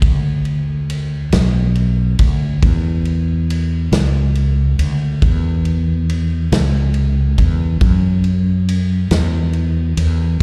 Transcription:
0.02 D2, kick, ride
0.45 ride
0.90 ride
1.32 B1, snare, ride
1.75 ride
2.19 D2, kick, ride
2.63 E2, kick, ride
3.05 ride
3.50 ride
3.92 C#2, snare, ride
4.35 ride
4.79 D2, ride
5.22 E2, kick, ride
5.65 ride
6.09 ride
6.52 C#2, snare, ride
6.94 ride
7.38 E2, kick, ride
7.81 F#2, kick, ride
8.24 ride
8.69 ride
9.11 E2, snare, ride
9.53 ride
9.97 E2, ride

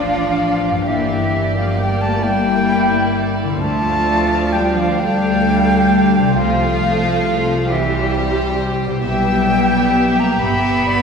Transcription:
Already playing: A1 F3 A#3 C4 D4 F4 C5 D5 F5
0.69 G2
0.74 A#3
0.78 D4
0.83 G4 D5
0.87 G1 E3 A#3 D5 E5
1.56 F3 F5
1.77 G3 G5
2.01 A3 A5
2.23 G3 E4 G5
3.44 D3 C4
3.53 A4
3.57 D5 A5
3.61 D2 F3 A3 D4 F5
4.53 G3 G5
4.75 F3 F5
4.99 G3 A3 F5 G5
6.18 C3
6.23 C4
6.27 G4
6.32 C2 G5
6.36 F3 A3 F4 C5 F5
7.70 E3 G3 G4 C5 E5
8.87 B2
8.91 E4
8.96 G4
9.00 E5 G5
9.05 B1 G3 B3 G4 E5
10.19 A#3 A#5
10.39 G1 B3 E5 B5
10.87 D5

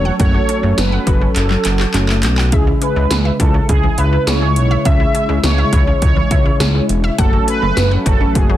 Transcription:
Already playing: E1 F#3 C#4 A4 C#5
0.05 F#5
0.20 F#1 A3 C#4 F#4 A4 C#5 F#5, kick, closed hi-hat
0.34 F#4
0.49 C#4, closed hi-hat
0.63 F#1 A3
0.78 F#1 F#3 B4, snare, closed hi-hat
0.92 F#5
1.07 F#1 F#4, kick, closed hi-hat
1.21 C#4
1.36 F#1 A4, clap, closed hi-hat
1.50 F#3, clap
1.65 F#1 F#5, clap, closed hi-hat
1.80 F#4, clap
1.94 F#1 A3 C#4 F#4 A4, clap, closed hi-hat
2.09 A3, clap
2.23 B1, clap, closed hi-hat
2.38 F#5, clap
2.52 C#2 C#3 G#3 C#4 E4 G#4 E5, kick, closed hi-hat
2.67 E4
2.82 C#4 B4, closed hi-hat
2.96 C#2 G#3
3.11 C#2 E3, snare, closed hi-hat
3.25 E5
3.40 C#2 E4 A4, kick, closed hi-hat
3.54 C#4
3.69 C#2 G#4, kick, closed hi-hat
3.83 E3
3.98 C#2 B4 E5, closed hi-hat
4.13 E4
4.27 C#2 G#3 C#4 E4 G#4 C#5, snare, closed hi-hat
4.42 G#3
4.56 B1, closed hi-hat
4.71 E5
4.85 C#2 G#3 C#4 E4 G#4 E5, kick, closed hi-hat
5.00 E4
5.14 C#4, closed hi-hat
5.29 C#2 G#3
5.44 C#2 E3 C#5, snare, closed hi-hat
5.58 E5
5.73 C#2 E4, kick, closed hi-hat
5.87 C#4
6.02 C#2 C#5, kick, closed hi-hat
6.16 E3
6.31 C#2 E5, kick, closed hi-hat
6.46 E4
6.60 C#2 G#3 C#4 E4 G#4, snare, closed hi-hat
6.75 G#3
6.89 E1, closed hi-hat
7.04 E5
7.18 F#1 F#3 A3 C#4 F#4 A4 F#5, kick, closed hi-hat
7.33 F#4
7.48 C#4 B4, closed hi-hat
7.62 F#1 A3
7.77 F#1 F#3, snare, closed hi-hat
7.91 F#5
8.06 F#1 F#4 A4, kick, closed hi-hat
8.21 C#4
8.35 F#1 G#4, kick, closed hi-hat
8.50 F#3

